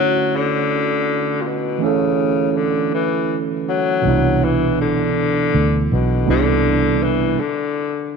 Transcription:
0.00 1.76 D3 medium
0.00 0.38 F#3 loud
0.00 1.77 A3 soft
0.00 1.78 C#4 soft
0.00 1.79 E4 soft
0.00 1.83 F#4 medium
0.36 1.42 D3 medium
1.41 1.49 A#2 medium
1.47 1.85 B2 medium
1.78 3.98 E3 medium
1.78 3.99 A3 medium
1.78 4.00 C#4 medium
1.83 2.51 C#3 medium
1.83 4.01 E4 soft
1.83 4.02 A4 medium
2.51 2.58 C#3 medium
2.57 2.93 D3 medium
2.94 3.37 E3 medium
3.69 4.46 F#3 medium
4.02 5.49 C2 medium
4.02 6.21 B2 medium
4.02 6.22 E3 medium
4.02 6.23 B3 medium
4.07 6.24 D4 medium
4.07 6.25 E4 medium
4.44 4.80 E3 medium
4.81 5.87 D3 medium
5.54 5.87 D2 medium
5.92 6.24 B1 medium
5.92 6.25 B2 medium
6.25 7.34 C2 medium
6.25 7.37 C3 medium
6.25 7.37 G3 medium
6.25 7.38 B3 medium
6.25 7.38 D4 medium
6.25 7.39 E4 medium
6.30 7.04 D3 loud
7.03 7.41 E3 medium
7.40 8.17 D3 medium

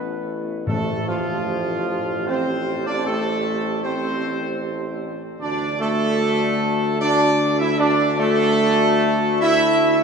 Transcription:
0.00 0.64 A1 medium
0.00 0.24 B3 medium
0.00 0.65 E4 medium
0.00 0.24 B4 medium
0.00 0.65 B4 medium
0.67 5.24 A1 medium
0.67 1.83 A2 medium
0.67 1.04 A3 medium
0.67 5.23 G4 medium
0.67 1.04 A4 medium
0.67 5.23 C5 medium
1.07 2.24 F3 loud
1.07 2.24 F4 medium
2.27 2.83 C4 loud
2.27 2.87 C5 medium
2.86 3.05 D4 medium
2.86 3.05 D5 medium
3.06 3.84 A3 loud
3.06 3.80 A4 medium
3.84 4.97 C4 loud
3.84 4.97 C5 medium
5.40 10.04 D2 medium
5.40 5.77 D4 loud
5.40 6.96 F#4 medium
5.40 6.96 D5 medium
5.40 5.77 D5 medium
5.80 6.96 A3 loud
5.80 6.97 A4 loud
7.00 7.56 D4 loud
7.00 7.75 F#4 medium
7.00 7.75 D5 medium
7.00 7.56 D5 loud
7.59 7.69 E4 loud
7.59 7.78 E5 medium
7.79 8.16 D4 loud
7.79 10.04 F#4 medium
7.79 10.04 D5 loud
7.79 8.19 D5 loud
8.19 9.37 A3 loud
8.19 9.38 A4 loud
9.41 9.97 E4 loud
9.41 9.97 E5 loud

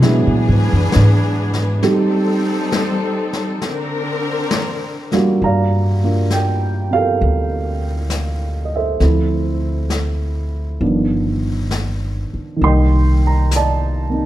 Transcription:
0.02 0.26 B2 medium
0.02 1.81 E3 medium
0.02 0.58 F#3 medium
0.02 0.58 G#3 soft
0.02 1.80 B3 medium
0.02 0.58 B3 soft
0.02 1.81 D4 medium
0.02 0.58 D4 soft
0.02 0.58 E4 medium
0.02 1.80 G#4 medium
0.02 brush sweep medium
0.02 snare soft
0.27 0.48 A#2 medium
0.48 0.70 G#2 medium
0.73 0.89 F#2 medium
0.92 1.80 G#2 medium
0.92 snare medium
1.53 snare soft
1.82 2.37 G3 soft
1.82 3.61 G3 medium
1.82 2.38 A3 soft
1.82 2.38 C4 soft
1.82 3.60 C4 medium
1.82 2.38 D#4 soft
1.82 3.61 D#4 medium
1.82 2.38 G4 medium
1.82 3.61 A4 medium
1.82 brush sweep soft
1.82 snare soft
2.72 snare medium
3.33 snare soft
3.60 5.40 D3 medium
3.60 5.39 C4 medium
3.60 5.39 D4 medium
3.60 5.40 A#4 medium
3.60 brush sweep medium
3.60 snare soft
4.51 snare medium
5.12 6.26 G3 medium
5.12 6.02 A#3 medium
5.12 6.03 D4 soft
5.12 6.03 F4 soft
5.12 6.26 F#4 medium
5.12 snare soft
5.40 7.18 G2 medium
5.40 6.35 A#5 medium
5.40 brush sweep soft
5.45 7.20 D5 medium
5.45 6.91 F5 medium
6.04 9.02 A#3 soft
6.04 9.02 D4 soft
6.04 6.91 F4 soft
6.30 6.89 G5 medium
6.30 snare soft
6.30 hi-hat pedal soft
6.90 9.00 C4 soft
6.90 9.02 F4 soft
6.90 9.03 G4 soft
6.90 8.59 F5 medium
6.95 8.70 A4 medium
6.95 8.70 A#4 medium
7.20 8.97 D2 medium
7.20 brush sweep soft
8.10 snare soft
8.10 hi-hat pedal soft
8.65 8.74 D#5 soft
8.76 10.51 A4 soft
8.76 10.51 C5 soft
8.76 10.50 E5 medium
9.00 10.77 D2 medium
9.00 10.80 F3 soft
9.00 10.81 A3 soft
9.00 10.81 C4 soft
9.00 10.81 E4 soft
9.00 brush sweep soft
9.00 snare soft
9.90 snare soft
9.90 hi-hat pedal soft
10.81 12.28 G1 medium
10.81 12.55 D#3 soft
10.81 12.61 F3 soft
10.81 12.62 B3 soft
10.81 12.61 D4 soft
10.81 brush sweep soft
11.71 snare soft
11.71 hi-hat pedal soft
12.34 muted upright bass stroke soft
12.57 14.26 D#3 soft
12.57 14.26 G3 soft
12.61 14.26 C2 medium
12.61 14.08 A#3 soft
12.61 13.26 C6 medium
12.61 brush sweep soft
12.65 13.55 D#5 medium
12.65 14.26 G5 medium
13.27 13.52 A#5 medium
13.51 snare soft
13.51 hi-hat pedal medium
13.56 14.26 D5 soft
13.56 14.26 D#5 soft
13.56 14.26 A5 medium
14.10 14.26 A#3 soft
14.10 14.26 C4 soft
14.10 14.26 D#4 soft

